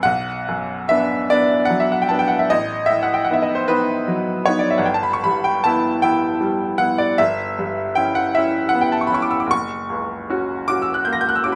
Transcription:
0.03 B1 F#5
0.48 F#2
0.89 B3 D4 E5
1.30 B3 D4 D5
1.65 F#5
1.70 F#3
1.80 E5
1.92 F#5
2.02 G5
2.09 B3 D4 A5
2.19 G5
2.28 F#5
2.39 E5
2.50 A1 D#5
2.86 E5
2.90 A2
3.03 F#5
3.14 G5
3.25 F#5
3.31 B3 D#4 E5
3.42 D#5
3.55 C5
3.68 B3 D#4 B4
4.08 F#3
4.46 B3 D#4 C#5
4.59 D5
4.71 E5
4.78 G1 F#5
4.86 G5
4.94 A5
5.03 B5
5.13 C#6
5.24 G2 B5
5.44 G5
5.64 B3 E4 A5
6.02 B3 E4 G5
6.41 G3
6.78 B3 E4 F#5
6.98 D5
7.18 G1 E5
7.59 G2
7.95 C#4 E4 G5
8.15 F#5
8.35 C#4 E4 E5
8.69 F#5
8.75 B3
8.81 G5
8.92 A5
9.01 C#6
9.07 B5
9.12 C#4 E4 C#6
9.22 D6
9.31 E6
9.40 D6
9.47 F#1
9.51 C#6
9.90 C#2
10.30 C#4 F#4
10.68 C#4 F#4 D6
10.82 E6
10.94 F#6
11.05 A#3 G6
11.13 A#6
11.21 G6
11.29 F#6
11.35 E6
11.44 C#4 F#4 D6

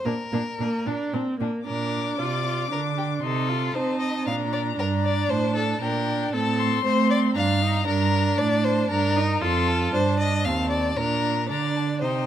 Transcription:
0.05 A#2 A#3 D4 A#4
0.32 A#2 A#3 D4
0.59 A#2 A#3 D4
0.86 A#2 D4
1.13 A#2 C4 D4
1.40 A#2 A#3 D4
1.67 A#2 D4 A#4 D6
2.19 C3 F4 D5
2.46 F4
2.71 D3 D4 A#4
2.98 G4
3.22 C3 D#4 A4 C6
3.49 F4
3.75 C4 D#4 C5 A5
4.00 D#5
4.26 A#2 D4 F5 A#5
4.53 D5
4.78 G2 D4 A#4 A#5
5.04 D5
5.30 A2 C5 A5
5.55 A4
5.81 A#2 D4 A#4 G5
6.33 A2 C4 A4 A5
6.59 C6
6.84 A3 C4 C5
7.10 D5
7.36 G2 D4 F5 A#5
7.61 D#4
7.87 G2 D4 A#4
8.38 A2 D5 A5
8.64 C5
8.90 G2 D4 A#4 A#5
9.16 D#4
9.42 F2 F4 A4 C6
9.67 A5
9.93 G2 D4 C5
10.19 D#5
10.45 D#2 C4 F5 A5
10.70 D5
10.97 A#2 D4 A#4 A#5
11.49 D3 D4 D5 A#5
11.76 A5
12.01 C3 D#4 C5 G5

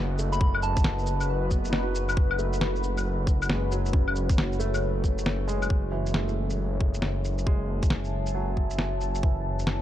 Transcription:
Already playing: F#1 B3 C#4 F#4 B4 D#5 F#5
0.18 A3, cabasa, shaker
0.32 B5, shaker
0.41 kick
0.55 claves
0.63 A5, cabasa
0.77 kick, shaker
0.84 snare
0.98 shaker
1.06 cabasa
1.20 claves, shaker
1.51 B3, kick, cabasa
1.65 shaker
1.70 D#4, snare
1.83 F#4
1.95 cabasa, shaker
2.09 claves, shaker
2.17 C#5, kick
2.31 claves
2.39 A3, cabasa
2.53 shaker
2.61 snare
2.75 shaker
2.83 cabasa
2.97 claves, shaker
3.27 kick, cabasa
3.42 claves, shaker
3.49 G#3, snare
3.71 F#3, cabasa, shaker
3.86 shaker
3.93 C#3, kick
4.08 claves
4.16 cabasa
4.29 kick, shaker
4.38 snare
4.52 shaker
4.59 A3, cabasa, shaker
4.74 claves, shaker
5.04 kick, cabasa
5.18 shaker
5.26 snare
5.48 G#3, cabasa, shaker
5.62 claves, shaker
5.70 F#1, kick
5.84 E5 A5
5.92 E3 G#5
6.06 shaker
6.11 G#3, snare
6.24 A3, shaker
6.50 shaker
6.81 kick
6.94 shaker
7.02 snare
7.25 shaker
7.38 shaker
7.46 G#3, kick
7.83 kick, shaker
7.90 snare
8.04 shaker
8.26 shaker
8.35 F#3
8.57 kick
8.70 shaker
8.79 snare
9.01 shaker
9.15 shaker
9.23 E3, kick
9.59 shaker
9.67 snare

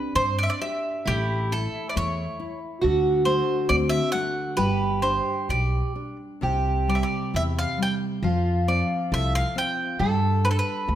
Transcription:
Already playing: C4 D4 G4 B4
0.15 G2 C4 C5
0.39 D5
0.43 E5
0.50 D5
0.61 G4 E5
1.05 A1 A3 E4 G4
1.52 E4 A4
1.89 D5
1.96 E2 A3 C#5
2.40 E4
2.82 D2 D3 F#4
3.25 A3 C5
3.69 D2 C4 D5
3.89 E5
4.12 A3 F#5
4.57 G1 G3 G4 B4
5.02 D4 C5
5.49 B1 G4 D5
5.96 D4
6.41 C2 C3 G4
6.88 G3 D5
6.95 E5
7.03 D5
7.34 E2 E4 E5
7.59 F5
7.78 G3
7.82 G5
8.22 F2 F3 F4
8.68 C4 D5
9.12 C2 A4 E5
9.35 F5
9.56 C4 G5
9.99 G2 G3 A4
10.44 D4 B4
10.51 A4
10.59 B4
10.87 D2 G4

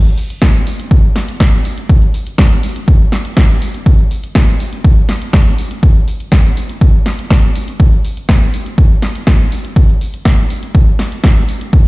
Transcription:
0.06 closed hi-hat
0.17 open hi-hat
0.30 closed hi-hat
0.42 kick, snare, closed hi-hat
0.67 open hi-hat
0.80 closed hi-hat
0.91 kick, closed hi-hat
1.16 snare, open hi-hat
1.28 closed hi-hat
1.40 kick, snare, closed hi-hat
1.65 open hi-hat
1.78 closed hi-hat
1.89 kick, closed hi-hat
2.02 closed hi-hat
2.14 open hi-hat
2.27 closed hi-hat
2.38 kick, snare, closed hi-hat
2.63 open hi-hat
2.76 closed hi-hat
2.88 kick, closed hi-hat
3.12 snare, open hi-hat
3.25 closed hi-hat
3.37 kick, snare, closed hi-hat
3.50 closed hi-hat
3.62 open hi-hat
3.74 closed hi-hat
3.86 kick, closed hi-hat
3.99 closed hi-hat
4.11 open hi-hat
4.24 closed hi-hat
4.35 kick, snare, closed hi-hat
4.60 open hi-hat
4.73 closed hi-hat
4.85 kick, closed hi-hat
5.09 snare, open hi-hat
5.22 closed hi-hat
5.33 kick, snare, closed hi-hat
5.58 open hi-hat
5.71 closed hi-hat
5.83 kick, closed hi-hat
5.96 closed hi-hat
6.08 open hi-hat
6.20 closed hi-hat
6.32 kick, snare, closed hi-hat
6.57 open hi-hat
6.69 closed hi-hat
6.81 kick, closed hi-hat
7.06 snare, open hi-hat
7.19 closed hi-hat
7.30 kick, snare, closed hi-hat
7.43 closed hi-hat
7.55 open hi-hat
7.68 closed hi-hat
7.80 kick, closed hi-hat
7.93 closed hi-hat
8.04 open hi-hat
8.17 closed hi-hat
8.29 kick, snare, closed hi-hat
8.54 open hi-hat
8.66 closed hi-hat
8.78 kick, closed hi-hat
9.02 snare, open hi-hat
9.15 closed hi-hat
9.27 kick, snare, closed hi-hat
9.52 open hi-hat
9.65 closed hi-hat
9.76 kick, closed hi-hat
9.89 closed hi-hat
10.01 open hi-hat
10.14 closed hi-hat
10.25 kick, snare, closed hi-hat
10.50 open hi-hat
10.63 closed hi-hat
10.75 kick, closed hi-hat
10.99 snare, open hi-hat
11.12 closed hi-hat
11.24 kick, snare, closed hi-hat
11.37 closed hi-hat
11.49 open hi-hat
11.61 closed hi-hat
11.73 kick, closed hi-hat

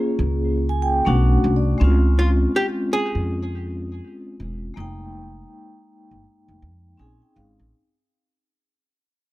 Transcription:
Already playing: A#3 C#4 F4 G#4
0.19 C#2
0.69 G#5
0.82 G5
1.05 B1 A3 C#4 D4 F#4 F#5
1.44 C2
1.56 D5
1.78 C#2 G#3 C4
1.82 C#4 F4
2.19 F4
2.56 G4
2.93 G#4
3.15 F2
4.40 E1
4.74 F1 G#3 A#3
4.78 D#4 G5
6.11 G1
6.48 F1
6.62 F2
6.97 A#1 C4 C#4 D#4 G#4 G#5
7.22 G5
7.36 G#1 F5
7.59 A1

